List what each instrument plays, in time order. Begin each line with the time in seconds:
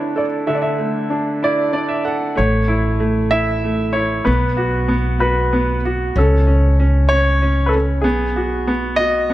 Already playing: upright piano D3 A3 D4 E4
0.16 upright piano A4, grand piano D5
0.47 upright piano D3, grand piano E5
0.55 grand piano D5
0.62 grand piano E5
0.78 upright piano A3
1.10 upright piano D4
1.43 upright piano E4, grand piano D5
1.73 upright piano D4 D5
1.88 upright piano E5
2.05 upright piano A4 F#5
2.35 upright bass A1, upright piano A3, grand piano C#5
2.68 upright piano E4
3.00 upright piano A3
3.31 upright piano E4, grand piano E5
3.64 upright piano A3
3.93 upright piano E4, grand piano C#5
4.25 upright bass B1, upright piano B3, grand piano B4
4.57 upright piano F#4
4.88 upright piano B3
5.19 upright piano F#4, grand piano B4
5.53 upright piano B3
5.85 upright piano F#4
6.16 upright bass C#2, upright piano C#4, grand piano A4
6.47 upright piano C#4
6.80 upright piano C#4
7.09 upright piano C#4, grand piano C#5
7.42 upright piano C#4
7.66 grand piano A4 B4
7.74 upright piano C#4
8.02 upright bass B1, upright piano B3, grand piano G#4
8.36 upright piano F#4
8.67 upright piano B3
8.96 upright piano F#4, grand piano D#5
9.30 upright piano B3